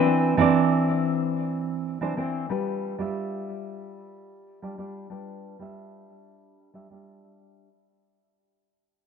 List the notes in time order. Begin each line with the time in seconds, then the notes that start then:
Already playing: E3 C4 D4 B4
0.37 E3 C4 D4 D5
2.01 E3 C4 D4 C5
2.17 E3 C4 D4 C5
2.49 G3 D4 F4 B4
2.99 G3 D4 F4 E5
4.62 G3 D4 F4 D5
4.78 G3 D4 F4 D5
5.10 G3 D4 F4 B4
5.59 G3 D4 F4 E5
6.74 G3 D4 F4 E5
6.90 G3 D4 F4 E5